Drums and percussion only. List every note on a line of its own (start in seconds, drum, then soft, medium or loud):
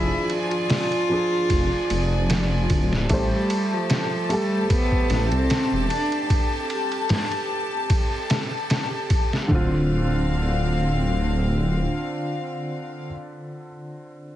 0.30 ride medium
0.51 ride soft
0.70 snare loud
0.70 open hi-hat medium
0.92 ride soft
1.50 kick loud
1.50 ride medium
1.90 ride medium
2.30 snare loud
2.30 ride medium
2.70 kick loud
2.70 ride medium
2.93 snare medium
3.10 kick loud
3.10 ride medium
3.50 ride medium
3.90 snare loud
3.90 ride medium
4.30 ride medium
4.70 kick loud
4.70 ride medium
4.92 kick loud
5.10 snare medium
5.10 ride medium
5.32 ride soft
5.50 snare loud
5.50 ride medium
5.90 ride medium
6.12 ride soft
6.30 kick loud
6.30 ride medium
6.70 ride medium
6.92 ride soft
7.09 snare loud
7.09 open hi-hat medium
7.32 ride soft
7.90 kick loud
7.90 ride medium
8.30 snare loud
8.30 ride medium
8.70 snare loud
8.70 ride medium
9.10 kick loud
9.10 ride medium
9.33 snare medium
9.50 kick loud